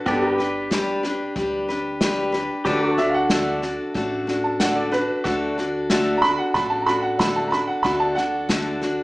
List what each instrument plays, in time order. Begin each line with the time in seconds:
0.06 upright bass G1, steel-string acoustic guitar G3 D4 G4 B4, upright piano B3 G4, pedal steel guitar F#4 A4 D5, kick, snare
0.26 pedal steel guitar G4
0.33 pedal steel guitar B4
0.38 steel-string acoustic guitar D4 G4 B4, snare
0.71 steel-string acoustic guitar G3 D4 G4 B4, kick, snare, hi-hat pedal
1.03 steel-string acoustic guitar D4 G4 B4, snare
1.36 upright bass D2, steel-string acoustic guitar G3 D4 G4 B4, kick, snare
1.68 steel-string acoustic guitar D4 G4 B4, snare
2.01 steel-string acoustic guitar G3 D4 G4 B4, kick, snare, hi-hat pedal
2.32 steel-string acoustic guitar D4 G4 B4, snare
2.65 upright bass D2, steel-string acoustic guitar D3 A3 D4 F#4 A4, pedal steel guitar G4 B4 D5, kick, snare
2.85 pedal steel guitar F#4
2.91 pedal steel guitar A4
2.97 steel-string acoustic guitar D4 F#4 A4, upright piano E5, snare
3.10 upright piano F5
3.14 upright piano F#5
3.30 steel-string acoustic guitar D3 A3 D4 F#4 A4, kick, snare, hi-hat pedal
3.62 steel-string acoustic guitar D4 F#4 A4, snare
3.94 upright bass A1, steel-string acoustic guitar A3 D4 F#4 A4, kick, snare
4.27 steel-string acoustic guitar D4 F#4 A4, snare
4.44 upright piano A5
4.60 steel-string acoustic guitar D3 A3 D4 F#4 A4, upright piano F#5, kick, snare, hi-hat pedal
4.75 upright piano D5
4.92 steel-string acoustic guitar D4 F#4 A4, upright piano B4, snare
5.24 upright bass D2, steel-string acoustic guitar D3 A3 D4 F#4 A4, upright piano F#4, kick, snare
5.58 steel-string acoustic guitar D4 F#4 A4, snare
5.90 steel-string acoustic guitar D3 A3 D4 F#4 A4, kick, snare, hi-hat pedal
6.17 upright piano A#5
6.22 steel-string acoustic guitar D4 F#4 A4, upright piano B5, snare
6.38 upright piano F#5
6.54 upright bass A1, steel-string acoustic guitar A3 D4 F#4 A4, upright piano B5, kick, snare
6.70 upright piano A5
6.82 upright piano A#5
6.86 steel-string acoustic guitar D4 F#4 A4, upright piano B5, snare
7.02 upright piano F#5
7.19 steel-string acoustic guitar D3 A3 D4 F#4 A4, upright piano B5, kick, snare, hi-hat pedal
7.36 upright piano A5
7.48 steel-string acoustic guitar A4, upright piano A#5
7.52 steel-string acoustic guitar D4 F#4, upright piano B5, snare
7.67 upright piano F#5
7.83 upright bass D2, steel-string acoustic guitar D3 A3 D4 F#4 A4, upright piano B5, kick, snare
8.00 upright piano A5
8.15 steel-string acoustic guitar D4 F#4 A4, upright piano F#5, snare
8.49 steel-string acoustic guitar D3 A3 D4 F#4 A4, kick, snare, hi-hat pedal
8.81 steel-string acoustic guitar D4 F#4 A4, snare